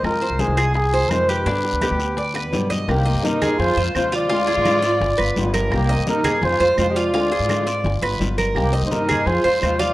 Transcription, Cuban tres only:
\new Staff \with { instrumentName = "Cuban tres" } { \time 4/4 \key c \minor \tempo 4 = 169 ees''8 c''4 aes'4 c''4 g'8 | d'4 g'4 d''8 b'4 ees''8 | r8 ees''4 aes'4 c''4 f'8 | f'8 aes'4 d''4 b'4 bes'8~ |
bes'8 ees''4 aes'4 c''4 f'8 | f'8 aes'4 d''4 b'4 bes'8~ | bes'8 ees''4 aes'4 c''4 f'8 | }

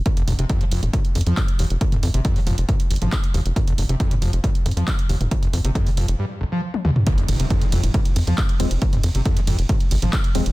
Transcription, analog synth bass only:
\new Staff \with { instrumentName = "Analog synth bass" } { \clef bass \time 4/4 \key f \minor \tempo 4 = 137 r8 f,,16 f,,16 r8 f,,16 f,,16 r8 f,16 f,16 r8 f,,16 f,,16 | r8 f,16 g,,16 r8 f,,16 f,,16 r8 aes,,16 aes,,16 r8 f,,16 f,,16 | r8 f,,16 f,,16 r8 f,,16 f,,16 r8 f,16 f,16 r8 f,,16 f,,16 | r8 f,16 g,,16 r8 f,,16 f,,16 r2 |
r8 f,,16 f,,16 r8 f,,16 f,,16 r8 f,16 f,16 r8 f,,16 f,,16 | r8 f,16 g,,16 r8 f,,16 f,,16 r8 aes,,16 aes,,16 r8 f,,16 f,,16 | }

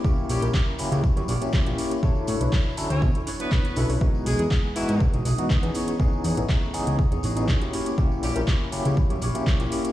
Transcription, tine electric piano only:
\new Staff \with { instrumentName = "Tine electric piano" } { \time 4/4 \key fis \dorian \tempo 4 = 121 <ais cis' e' g'>8. <ais cis' e' ais'>8. <fis ais cis' e' g'>8 r16 <fis ais cis' e' g'>16 r16 <fis ais cis' e' g'>8 <ais cis' e' g'>8. | <fis d' e' a' cis''>8. <fis d' e' b' cis''>8. <fis cis' d' e' a'>8 r16 <fis cis' d' e' a'>16 r16 <fis d' e' cis''>8. <fis cis' d' e' a'>8 | <e gis b dis' fis'>8. <e gis b dis' gis'>8. <e gis b dis' fis'>8 r16 <e gis b dis' fis'>16 r16 <e gis b dis' fis'>8 <e b cis' dis' gis'>8. | <e b cis' dis' gis'>8. <e a b cis' dis'>8. <e b cis' dis' gis'>8 r16 <e b cis' dis' gis'>16 r16 <e b cis' dis' gis'>8 <fis ais cis' e' g'>8. |
<ais cis' e' g'>8. <ais cis' e' ais'>8. <fis ais cis' e' g'>8 r16 <fis ais cis' e' g'>16 r16 <fis ais cis' e' g'>8 <ais cis' e' g'>8. | }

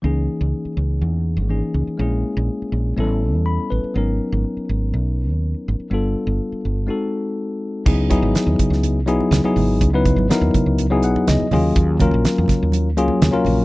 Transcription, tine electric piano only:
\new Staff \with { instrumentName = "Tine electric piano" } { \time 4/4 \key cis \dorian \tempo 4 = 123 << { r1 | r2. b''8 b'8 | r1 | r1 |
r1 | r2 r8 fis''8 dis''4 | r1 | } \\ { <e ais cis' dis' gis'>2. <e ais cis' dis' gis'>4 | <gis ais cis' e' gis'>2 <g b cis' e' a'>2 | <fis b cis' dis' ais'>1 | <g b d' f' a'>2 <gis bis dis' fis' a'>2 |
<fis b dis' e' gis'>8 <fis b dis' e' gis'>4.~ <fis b dis' e' gis'>16 r16 <fis b dis' e' gis'>8. <fis b dis' e' gis'>8.~ | <fis b dis' e' gis'>16 <fis b dis' e' b'>8. <fis b dis' e' ais'>4~ <fis b dis' e' ais'>16 <fis b dis' e' gis'>4~ <fis b dis' e' gis'>16 <fis ais cis' eis' gis'>8~ | <fis ais cis' eis' gis'>8 <fis ais cis' eis' ais'>4.~ <fis ais cis' eis' ais'>16 r16 <fis ais cis' eis' gis'>8. <fis ais cis' eis' ais'>8. | } >> }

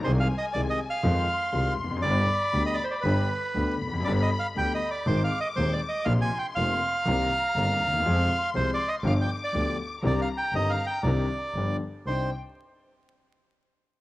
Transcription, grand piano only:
\new Staff \with { instrumentName = "Grand piano" } { \clef bass \time 4/4 \key c \minor \tempo 4 = 120 <c, c ees aes c' aes'>8 r8 <c, c ees aes c' aes'>8 r8 <f, ees f aes c' f'>8 r8 <c, c ees aes c' f'>8 r32 e,32 f,32 fis,32 | <g,, g, d g b g'>8 r8 <d, d g b g'>8 r8 <g,, g, d g b g'>8 r8 <d, d g b g'>8 r32 e,32 f,32 fis,32 | <g,, g, d g b g'>8 r8 <d, d g b g'>8 r8 <aes,, aes, ees aes c' aes'>8 r8 <ees,, ees, ees aes c' aes'>8 r8 | <bes,, bes, c f bes f'>8 r8 <f,, f, c f bes f'>8 r8 <c, c ees bes c' g'>8 r8 <g,, g, ees bes c' g'>8 r32 d,32 ees,32 e,32 |
<f, f aes c' aes'>8 r8 <c, c f aes c' aes'>8 r8 <g,, g, f b d' g'>8 r8 <d, d f b d' g'>8 r8 | <c, c ees c' d' g'>8 r8 <g,, g, ees c' d' g'>8 r8 <c, c ees c' d' g'>8 r8 <g,, g, f b d' g'>8 r8 | <c, d' ees' c''>8 r2. r8 | }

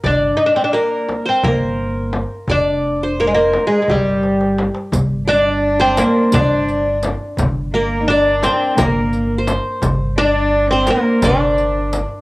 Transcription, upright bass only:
\new Staff \with { instrumentName = "Upright bass" } { \clef bass \time 7/8 \key g \minor \tempo 4 = 86 g,,8 r4. g,,4. | f,,2 g,,4. | g,,2 g,,4. | g,,2 g,,4. |
g,,2 g,,4. | }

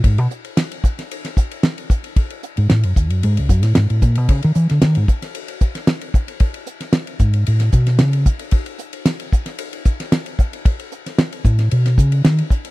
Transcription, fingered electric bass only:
\new Staff \with { instrumentName = "Fingered electric bass" } { \clef bass \time 4/4 \key gis \phrygian \tempo 4 = 113 gis,16 b,16 r2. r8 | r8. gis,16 a,16 fis,16 dis,16 fis,16 gis,16 cis,16 fis,16 a,16 gis,16 a,16 ais,16 b,16 | cis16 dis16 e16 d16 dis16 gis,16 r2 r8 | r4. gis,8 a,8 b,8 cis8 r8 |
r1 | r4. a,8 b,8 cis8 dis8 r8 | }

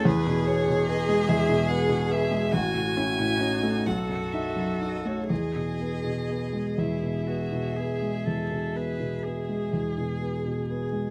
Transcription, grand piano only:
\new Staff \with { instrumentName = "Grand piano" } { \clef bass \time 12/8 \key e \major \tempo 4. = 42 e,16 b,16 b16 b,16 b16 gis16 e,16 b,16 b16 b,16 b16 gis16 a,,16 a,16 cis'16 a,16 cis'16 a16 b,,16 fis,16 dis'16 fis,16 dis'16 a16 | e,16 b,16 b16 b,16 b16 gis16 e,16 b,16 b16 b,16 b16 gis16 e,16 b,16 b16 b,16 b16 gis16 e,16 b,16 b16 b,16 b16 gis16 | }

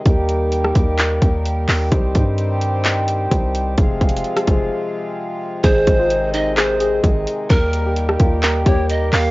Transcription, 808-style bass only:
\new Staff \with { instrumentName = "808-style bass" } { \clef bass \time 4/4 \key aes \major \tempo 4 = 129 ees,4. ees,4 ees,4 ees,8 | c,8 g,2~ g,8 c,4 | f,,8 f,,8 r8 f,,8 r2 | aes,,8 aes,,2~ aes,,8 aes,,8 r8 |
ees,4. ees,4 ees,4 ees,8 | }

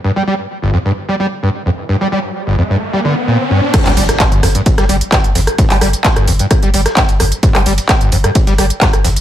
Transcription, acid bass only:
\new Staff \with { instrumentName = "Acid bass" } { \clef bass \time 4/4 \key f \mixolydian \tempo 4 = 130 g,16 g16 g16 r8 g,,16 f,16 g,16 r16 g16 g16 r16 g,16 r16 f,16 r16 | g,16 g16 g16 r8 g,,16 f,16 g,16 r16 g16 d16 r16 bes,16 r16 g,16 r16 | g,16 g16 g16 r8 g,,16 f,16 g,16 r16 g16 g16 r16 g,16 r16 f,16 r16 | g,16 g16 g16 r8 g,,16 f,16 g,16 r16 g16 g16 r16 g,16 r16 f,16 r16 |
g,16 g16 g16 r8 g,,16 f,16 g,16 r16 g16 g16 r16 g,16 r16 f,16 r16 | }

